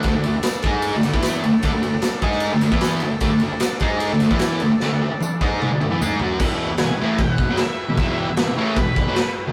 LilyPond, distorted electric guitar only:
\new Staff \with { instrumentName = "Distorted electric guitar" } { \clef bass \time 4/4 \key e \mixolydian \tempo 4 = 151 <d a>16 <d a>16 <d a>16 r8. <gis dis' gis'>8. <d a>16 <d a>16 <e b e'>8. <d a>16 r16 | <d a>16 <d a>16 <d a>16 r8. <gis dis' gis'>8. <d a>16 <d a>16 <e b e'>8. <d a>16 r16 | <d a>16 <d a>16 <d a>16 r8. <gis dis' gis'>8. <d a>16 <d a>16 <e b e'>8. <d a>16 r16 | <d a>16 <d a>16 <d a>16 r8. <gis dis' gis'>8. <d a>16 <d a>16 <e b>16 <gis dis' gis'>8 <fis cis' fis'>8 |
<e, b, e>8. r16 <e, b,>16 <e, b,>16 <a, e a>8 <e, b,>8 <e, b,>16 <b, fis>16 r8. <e, b,>16 | <e, b, e>8. r16 <e, b,>16 <e, b,>16 <a, e a>8 <e, b,>8 <e, b,>16 <b, fis>16 r8. <e, b,>16 | }